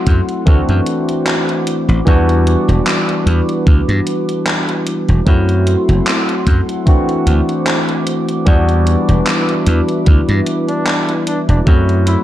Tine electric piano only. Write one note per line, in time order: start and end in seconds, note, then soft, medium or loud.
0.00 0.39 F#3 medium
0.00 0.39 A3 medium
0.00 0.40 C4 medium
0.00 0.40 E4 medium
0.00 0.40 F#4 medium
0.45 1.99 E3 medium
0.45 1.99 A3 medium
0.45 1.99 C4 medium
0.45 2.00 D4 medium
0.45 2.00 F#4 medium
2.05 5.19 E3 medium
2.05 5.19 G3 medium
2.05 5.19 B3 medium
2.05 5.20 D4 medium
2.05 5.20 F#4 medium
5.25 6.79 F#3 medium
5.25 6.79 A3 medium
5.25 6.80 C4 medium
5.25 6.80 E4 medium
5.25 6.80 F#4 medium
6.85 8.39 E3 medium
6.85 8.39 A3 medium
6.85 8.40 C4 medium
6.85 8.40 D4 medium
6.85 8.40 F#4 medium
8.45 11.59 E3 medium
8.45 11.59 G3 medium
8.45 11.59 B3 medium
8.45 11.60 D4 medium
8.45 11.60 F#4 medium
11.65 12.24 F#3 medium
11.65 12.24 A3 medium
11.65 12.24 C4 medium
11.65 12.24 E4 medium
11.65 12.24 F#4 medium